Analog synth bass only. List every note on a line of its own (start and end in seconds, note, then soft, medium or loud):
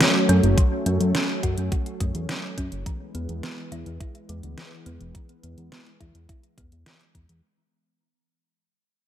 0.29 0.41 F#2 medium
0.43 0.56 F#1 medium
0.86 0.99 F#2 medium
1.00 1.13 F#2 medium
1.43 1.56 F#2 medium
1.57 1.70 F#2 medium
2.01 2.13 F#2 medium
2.15 2.27 E2 medium
2.58 2.70 F#2 medium
2.72 2.84 F#1 medium
3.15 3.27 E2 medium
3.29 3.41 E2 medium
3.72 3.84 E2 medium
3.86 3.99 E2 medium
4.29 4.41 E2 loud
4.43 4.56 D2 medium
4.86 4.99 E2 medium
5.01 5.13 E1 medium
5.44 5.56 E2 medium
5.58 5.70 E2 medium
6.01 6.13 E2 medium
6.15 6.27 E2 medium
6.58 6.70 E2 medium
6.72 6.84 E2 medium
7.15 7.27 E2 medium
7.29 7.42 E2 medium